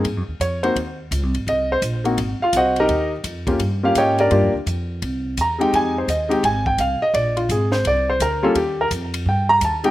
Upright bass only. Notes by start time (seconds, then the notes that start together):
0.04 G#2
0.17 F#2
0.28 D#2
0.40 F2
0.76 D#2
1.11 C#2
1.23 C2
1.47 C2
1.82 A#1
2.17 G#1
2.40 muted upright bass stroke
2.53 C2
2.89 D#2
3.23 F2
3.59 G2
3.95 G#2
4.31 G2
4.43 F2
4.54 D2
4.66 F2
5.02 C2
5.38 E2
5.73 F2
6.08 D#2
6.43 G#1
6.78 C2
7.13 A#1
7.49 G#1
7.85 C2
8.20 D2
8.55 D#2
8.91 F2
9.26 G2
9.61 D#2